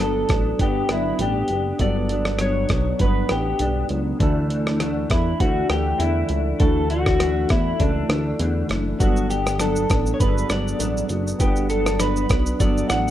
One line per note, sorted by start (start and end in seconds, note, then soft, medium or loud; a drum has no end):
0.00 0.25 G1 medium
0.00 0.29 G2 medium
0.00 0.29 F#3 medium
0.00 0.21 B3 medium
0.00 0.30 B3 medium
0.00 0.22 D4 medium
0.00 0.28 D4 medium
0.00 0.22 F#4 medium
0.00 0.22 A4 medium
0.00 0.61 A4 medium
0.29 0.53 A1 medium
0.29 0.61 F#3 soft
0.29 0.59 B3 soft
0.29 0.59 D4 soft
0.29 kick medium
0.29 cross-stick medium
0.29 closed hi-hat medium
0.58 0.83 G1 medium
0.58 0.88 G2 medium
0.58 1.42 B3 medium
0.58 0.89 B3 medium
0.58 1.42 D4 medium
0.58 0.87 D4 medium
0.58 0.88 G4 medium
0.58 1.43 B4 medium
0.58 1.43 F#5 medium
0.58 kick medium
0.58 closed hi-hat medium
0.88 1.13 G1 medium
0.88 1.20 F#3 soft
0.88 1.19 B3 medium
0.88 1.19 D4 medium
0.88 1.21 E4 medium
0.88 cross-stick medium
0.88 closed hi-hat soft
1.19 1.43 A1 medium
1.19 1.49 G2 medium
1.19 1.50 B3 medium
1.19 1.48 D4 medium
1.19 1.81 G4 medium
1.19 closed hi-hat medium
1.48 1.73 F#1 medium
1.48 1.80 B3 soft
1.48 1.79 D4 soft
1.48 closed hi-hat soft
1.78 2.66 G1 loud
1.78 2.09 G2 medium
1.78 2.10 F#3 medium
1.78 2.62 B3 medium
1.78 2.10 B3 medium
1.78 2.62 D4 medium
1.78 2.08 D4 medium
1.78 2.63 F#4 medium
1.78 2.63 A4 medium
1.78 2.40 D5 loud
1.78 kick loud
1.78 closed hi-hat medium
2.09 2.39 F#3 soft
2.09 2.40 B3 soft
2.09 2.39 D4 medium
2.09 closed hi-hat medium
2.25 cross-stick medium
2.39 2.69 G2 medium
2.39 2.70 F#3 medium
2.39 2.70 B3 medium
2.39 2.68 D4 medium
2.39 3.01 C#5 medium
2.39 cross-stick medium
2.39 closed hi-hat medium
2.69 2.94 B1 medium
2.69 3.00 B3 soft
2.69 3.00 D4 soft
2.69 kick medium
2.69 cross-stick medium
2.69 closed hi-hat medium
2.73 2.99 F#3 soft
2.99 3.24 G1 medium
2.99 3.29 G2 medium
2.99 3.30 F#3 medium
2.99 3.82 B3 medium
2.99 3.29 B3 medium
2.99 3.82 D4 medium
2.99 3.27 D4 medium
2.99 3.31 B4 loud
2.99 3.83 B4 medium
2.99 3.83 F#5 medium
2.99 kick medium
2.99 closed hi-hat medium
3.29 3.54 A1 medium
3.29 3.59 B3 soft
3.29 3.59 D4 medium
3.29 3.87 G4 medium
3.29 cross-stick medium
3.29 closed hi-hat soft
3.59 3.84 B1 medium
3.59 3.89 G2 medium
3.59 3.89 B3 medium
3.59 3.87 D4 medium
3.59 closed hi-hat medium
3.89 4.14 C#2 medium
3.89 4.19 F#3 soft
3.89 4.20 B3 soft
3.89 4.19 D4 soft
3.89 closed hi-hat soft
4.19 5.06 D2 loud
4.19 4.49 D3 medium
4.19 4.50 E3 medium
4.19 5.03 A3 medium
4.19 4.49 A3 medium
4.19 5.03 D4 medium
4.19 4.47 D4 medium
4.19 5.03 E4 medium
4.19 kick loud
4.19 closed hi-hat medium
4.23 5.04 A4 medium
4.49 4.79 E3 soft
4.49 4.80 A3 soft
4.49 4.79 D4 medium
4.49 closed hi-hat soft
4.67 cross-stick medium
4.80 5.10 D3 medium
4.80 5.10 E3 medium
4.80 5.10 A3 loud
4.80 5.09 D4 loud
4.80 cross-stick medium
4.80 closed hi-hat medium
5.10 5.34 E2 medium
5.10 5.40 E3 soft
5.10 5.41 A3 soft
5.10 5.40 D4 soft
5.10 5.40 E4 medium
5.10 kick loud
5.10 cross-stick medium
5.10 closed hi-hat medium
5.40 5.64 D2 medium
5.40 5.70 D3 medium
5.40 5.71 E3 medium
5.40 6.23 A3 medium
5.40 5.70 A3 medium
5.40 6.23 D4 medium
5.40 5.68 D4 medium
5.40 6.23 E4 medium
5.40 5.70 F#4 loud
5.40 6.24 F#5 medium
5.40 kick medium
5.40 closed hi-hat medium
5.69 5.94 D2 medium
5.69 5.99 E3 soft
5.69 5.99 A3 medium
5.69 6.00 D4 soft
5.69 6.01 G4 medium
5.69 cross-stick loud
5.69 closed hi-hat soft
5.99 6.24 E2 medium
5.99 6.29 D3 medium
5.99 6.30 E3 medium
5.99 6.30 A3 medium
5.99 6.28 D4 medium
5.99 6.61 E4 medium
5.99 closed hi-hat medium
6.29 6.54 C#2 medium
6.29 6.60 A3 soft
6.29 6.60 D4 medium
6.29 closed hi-hat medium
6.33 6.59 E3 soft
6.59 7.46 D2 medium
6.59 6.90 D3 medium
6.59 6.90 E3 medium
6.59 7.43 A3 medium
6.59 6.90 A3 medium
6.59 7.43 D4 medium
6.59 6.87 D4 medium
6.59 7.44 E4 medium
6.59 7.44 F#4 medium
6.59 6.90 A4 medium
6.59 kick loud
6.59 closed hi-hat medium
6.88 7.20 A3 soft
6.88 7.19 D4 medium
6.88 7.50 F#4 medium
6.88 closed hi-hat soft
6.92 7.19 E3 soft
7.06 kick medium
7.06 cross-stick medium
7.19 7.50 D3 medium
7.19 7.50 E3 medium
7.19 7.50 A3 medium
7.19 7.48 D4 medium
7.19 cross-stick medium
7.19 closed hi-hat medium
7.49 7.74 E2 medium
7.49 7.79 E3 soft
7.49 7.80 A3 soft
7.49 7.79 D4 soft
7.49 7.81 E4 medium
7.49 kick medium
7.49 cross-stick medium
7.49 closed hi-hat medium
7.80 8.04 C#2 medium
7.80 8.10 E3 medium
7.80 8.63 A3 medium
7.80 8.10 A3 medium
7.80 8.63 D4 medium
7.80 8.66 D4 medium
7.80 8.08 D4 medium
7.80 8.63 E4 medium
7.80 8.64 A4 medium
7.80 kick medium
7.80 closed hi-hat medium
8.09 8.34 D2 loud
8.09 8.39 E3 soft
8.09 8.39 A3 soft
8.09 8.40 D4 medium
8.09 cross-stick loud
8.09 closed hi-hat soft
8.39 8.64 E2 medium
8.39 8.70 D3 medium
8.39 8.70 E3 medium
8.39 8.69 A3 medium
8.39 8.67 D4 medium
8.39 closed hi-hat medium
8.68 8.94 F#1 medium
8.68 8.99 E3 soft
8.68 9.00 A3 soft
8.68 8.99 D4 medium
8.68 cross-stick medium
8.68 closed hi-hat soft
8.99 9.86 G1 loud
8.99 9.30 G2 medium
8.99 9.30 F#3 medium
8.99 9.82 B3 medium
8.99 9.29 B3 medium
8.99 9.83 D4 medium
8.99 9.27 D4 medium
8.99 9.30 F#4 medium
8.99 9.83 A4 medium
8.99 9.83 F#5 medium
8.99 kick loud
8.99 closed hi-hat medium
8.99 shaker medium
9.17 shaker soft
9.28 9.59 B3 soft
9.28 9.59 D4 medium
9.28 9.60 G4 medium
9.28 closed hi-hat soft
9.28 shaker medium
9.47 cross-stick medium
9.47 shaker medium
9.58 9.89 G2 medium
9.58 9.90 F#3 medium
9.58 9.90 B3 medium
9.58 9.88 D4 medium
9.58 10.13 A4 medium
9.58 cross-stick medium
9.58 closed hi-hat medium
9.58 shaker medium
9.76 shaker medium
9.89 10.14 A1 medium
9.89 10.19 F#3 soft
9.89 10.20 B3 soft
9.89 10.20 D4 soft
9.89 kick loud
9.89 cross-stick medium
9.89 closed hi-hat medium
9.89 shaker medium
10.06 shaker medium
10.14 10.20 C#5 medium
10.19 10.44 G1 medium
10.19 10.50 G2 medium
10.19 10.50 F#3 medium
10.19 11.03 B3 medium
10.19 10.50 B3 medium
10.19 11.03 D4 medium
10.19 10.47 D4 medium
10.19 11.03 F#4 medium
10.19 10.28 G#4 medium
10.19 10.50 B4 loud
10.19 kick medium
10.19 closed hi-hat medium
10.19 shaker medium
10.28 11.07 A4 medium
10.38 shaker soft
10.49 10.74 G1 medium
10.49 10.78 F#3 soft
10.49 10.79 B3 soft
10.49 10.79 D4 medium
10.49 11.07 D5 medium
10.49 cross-stick loud
10.49 closed hi-hat soft
10.49 shaker soft
10.68 shaker medium
10.78 11.04 A1 medium
10.78 11.09 G2 medium
10.78 11.10 F#3 medium
10.78 11.09 B3 medium
10.78 11.07 D4 medium
10.78 closed hi-hat medium
10.78 shaker medium
10.97 shaker soft
11.08 11.34 F#1 medium
11.08 11.41 F#3 soft
11.08 11.40 B3 soft
11.08 11.39 D4 soft
11.08 closed hi-hat soft
11.08 shaker soft
11.27 shaker medium
11.39 12.26 G1 loud
11.39 11.70 G2 medium
11.39 12.22 B3 medium
11.39 11.69 B3 medium
11.39 12.23 D4 medium
11.39 11.68 D4 medium
11.39 11.69 G4 medium
11.39 12.23 B4 medium
11.39 12.23 F#5 medium
11.39 kick loud
11.39 closed hi-hat medium
11.39 shaker medium
11.56 shaker soft
11.69 11.99 F#3 soft
11.69 12.00 B3 soft
11.69 12.00 D4 medium
11.69 12.01 A4 medium
11.69 closed hi-hat soft
11.69 shaker soft
11.86 cross-stick loud
11.86 shaker medium
12.00 12.30 G2 medium
12.00 12.30 F#3 medium
12.00 12.30 B3 medium
12.00 12.28 D4 loud
12.00 12.60 B4 medium
12.00 cross-stick medium
12.00 closed hi-hat medium
12.00 shaker medium
12.16 shaker medium
12.29 12.54 B1 medium
12.29 12.59 F#3 soft
12.29 12.61 B3 soft
12.29 12.60 D4 soft
12.29 kick loud
12.29 cross-stick medium
12.29 closed hi-hat medium
12.29 shaker medium
12.46 shaker medium
12.59 12.84 G1 medium
12.59 12.90 G2 soft
12.59 12.90 F#3 medium
12.59 13.11 B3 medium
12.59 12.90 B3 medium
12.59 13.11 D4 medium
12.59 12.88 D4 medium
12.59 13.11 F#4 medium
12.59 13.11 A4 medium
12.59 12.89 D5 loud
12.59 kick medium
12.59 closed hi-hat medium
12.59 shaker medium
12.78 shaker medium
12.89 13.11 A1 medium
12.89 13.11 F#3 soft
12.89 13.11 B3 soft
12.89 13.11 D4 medium
12.89 13.11 F#5 medium
12.89 cross-stick loud
12.89 closed hi-hat soft
12.89 shaker soft